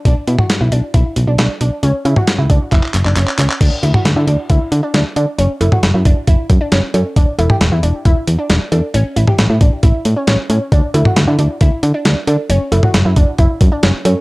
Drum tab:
CC |----------------|----------------|x---------------|----------------|
HH |x-x-x-x-x-x-x-x-|x-x-x-x-x-x-x-x-|x-x-x-x-x-x-x-x-|x-x-x-x-x-x-x-x-|
CB |----------------|----------------|----------------|--x-----------x-|
CP |----------------|--------xxxxxxxx|----------------|----------------|
SD |----o-------o---|----o-----------|----o-------o---|----o-------o---|
T2 |---o------------|---o------------|---o------------|---o------------|
BD |o-------o-------|------o-o-------|o-------o-------|------o-o-o-----|

CC |----------------|----------------|----------------|----------------|
HH |x-x-x-x-x-x-x-x-|x-x-x-x-x-x-x-x-|x-x-x-x-x-x-x-x-|x-x-x-x-x-x-x-x-|
CB |--x-----------x-|----------------|--x-----------x-|--x-----------x-|
CP |----------------|----------------|----------------|----------------|
SD |----o-------o---|----o-------o---|----o-------o---|----o-------o---|
T2 |---o------------|---o------------|---o------------|---o------------|
BD |o-------o-------|------o-o-------|o-------o-------|------o-o-o-----|